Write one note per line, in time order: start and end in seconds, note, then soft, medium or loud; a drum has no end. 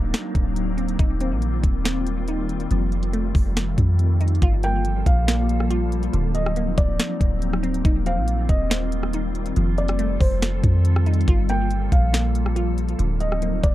0.00 0.13 D1 loud
0.00 0.56 D3 medium
0.00 0.98 F#3 medium
0.00 0.99 A#3 medium
0.00 2.67 A#3 medium
0.00 4.38 C4 medium
0.00 0.96 D4 medium
0.00 0.98 D#4 medium
0.14 snare loud
0.14 closed hi-hat medium
0.35 0.97 D1 loud
0.35 kick medium
0.35 closed hi-hat medium
0.56 closed hi-hat medium
0.77 0.99 C4 medium
0.77 closed hi-hat medium
0.88 closed hi-hat medium
0.99 1.33 D#1 loud
0.99 2.69 D#3 medium
0.99 4.39 G3 medium
0.99 2.27 D#4 medium
0.99 4.39 F4 medium
0.99 kick loud
0.99 closed hi-hat medium
1.20 1.83 C4 medium
1.20 closed hi-hat medium
1.31 1.62 A#1 loud
1.42 closed hi-hat medium
1.64 2.67 D#1 loud
1.64 kick loud
1.64 closed hi-hat medium
1.85 2.70 C4 medium
1.85 snare loud
1.85 closed hi-hat medium
2.07 closed hi-hat medium
2.28 2.71 D#4 medium
2.28 closed hi-hat medium
2.49 closed hi-hat medium
2.60 closed hi-hat medium
2.71 3.32 F1 loud
2.71 4.40 D#3 medium
2.71 3.99 F3 medium
2.71 4.40 A3 medium
2.71 closed hi-hat medium
2.92 closed hi-hat soft
3.03 closed hi-hat medium
3.13 4.42 A3 medium
3.13 closed hi-hat medium
3.35 3.76 F1 loud
3.35 kick loud
3.35 open hi-hat medium
3.57 snare loud
3.57 closed hi-hat medium
3.78 4.40 F2 loud
3.78 kick medium
3.78 closed hi-hat medium
3.99 closed hi-hat medium
4.21 4.42 D#4 medium
4.21 closed hi-hat medium
4.28 closed hi-hat medium
4.35 closed hi-hat medium
4.42 5.04 G1 loud
4.42 7.82 F3 medium
4.42 6.12 G3 medium
4.42 9.52 A#3 medium
4.42 6.12 F4 medium
4.42 5.69 F4 loud
4.42 6.12 A4 medium
4.42 kick loud
4.42 closed hi-hat medium
4.63 5.27 A#3 medium
4.63 5.04 G5 medium
4.63 closed hi-hat medium
4.85 closed hi-hat medium
5.06 6.10 A#1 loud
5.06 5.67 F5 medium
5.06 kick loud
5.06 closed hi-hat medium
5.28 6.14 A#3 loud
5.28 snare loud
5.28 closed hi-hat medium
5.49 closed hi-hat medium
5.60 cross-stick medium
5.70 6.13 F4 medium
5.70 closed hi-hat medium
5.92 closed hi-hat medium
6.03 closed hi-hat medium
6.13 6.75 D1 loud
6.13 7.42 D3 medium
6.13 7.83 F#3 medium
6.13 11.24 C4 medium
6.13 7.83 D#4 medium
6.13 closed hi-hat medium
6.35 6.75 D#5 medium
6.35 closed hi-hat medium
6.46 cross-stick loud
6.56 7.85 A#3 medium
6.56 closed hi-hat medium
6.78 6.98 D1 loud
6.78 7.38 D5 medium
6.78 kick loud
6.78 closed hi-hat medium
6.99 snare loud
6.99 closed hi-hat medium
7.21 7.82 D1 loud
7.21 kick loud
7.21 closed hi-hat medium
7.42 closed hi-hat medium
7.53 cross-stick loud
7.63 7.85 C4 medium
7.63 closed hi-hat medium
7.74 closed hi-hat medium
7.85 8.19 D#1 loud
7.85 11.24 D#3 medium
7.85 12.95 G3 medium
7.85 9.13 D#4 loud
7.85 9.55 F4 medium
7.85 kick loud
7.85 closed hi-hat medium
8.06 8.69 C4 medium
8.06 8.47 F5 medium
8.06 closed hi-hat medium
8.17 8.48 A#1 loud
8.28 closed hi-hat medium
8.49 9.52 D#1 loud
8.49 9.10 D#5 medium
8.49 kick loud
8.49 closed hi-hat medium
8.70 9.56 C4 medium
8.70 snare loud
8.70 closed hi-hat medium
8.92 closed hi-hat medium
9.03 cross-stick medium
9.13 9.57 D#4 medium
9.13 closed hi-hat medium
9.35 closed hi-hat medium
9.46 closed hi-hat medium
9.56 10.18 F1 loud
9.56 10.85 F3 medium
9.56 12.96 F4 medium
9.56 12.96 A4 medium
9.56 closed hi-hat medium
9.78 10.18 D5 medium
9.78 closed hi-hat soft
9.88 cross-stick medium
9.88 closed hi-hat medium
9.99 11.28 A3 loud
9.99 closed hi-hat medium
10.20 10.62 F1 loud
10.20 10.81 C5 medium
10.20 kick loud
10.20 open hi-hat medium
10.42 snare loud
10.42 closed hi-hat medium
10.64 11.25 F2 loud
10.64 kick loud
10.64 closed hi-hat medium
10.85 closed hi-hat medium
10.96 cross-stick loud
11.06 11.28 D#4 medium
11.06 closed hi-hat medium
11.14 closed hi-hat medium
11.21 closed hi-hat medium
11.28 11.90 G1 loud
11.28 13.75 F3 medium
11.28 12.98 A#3 medium
11.28 12.55 F4 loud
11.28 kick loud
11.28 closed hi-hat medium
11.49 12.12 A#3 medium
11.49 11.90 G5 medium
11.49 closed hi-hat medium
11.71 closed hi-hat medium
11.92 12.95 A#1 loud
11.92 12.53 F5 medium
11.92 kick loud
11.92 closed hi-hat medium
12.13 12.99 A#3 medium
12.13 snare loud
12.13 closed hi-hat medium
12.35 closed hi-hat medium
12.46 cross-stick medium
12.56 12.99 F4 medium
12.56 closed hi-hat medium
12.78 closed hi-hat medium
12.89 closed hi-hat medium
12.99 13.61 D1 loud
12.99 13.75 D3 medium
12.99 13.75 F#3 medium
12.99 13.75 A#3 medium
12.99 13.75 C4 medium
12.99 13.75 D#4 medium
12.99 closed hi-hat medium
13.20 13.61 D#5 medium
13.20 closed hi-hat medium
13.32 cross-stick medium
13.42 13.75 A#3 medium
13.42 closed hi-hat medium
13.64 13.75 D1 loud
13.64 13.75 D5 medium
13.64 kick loud
13.64 closed hi-hat medium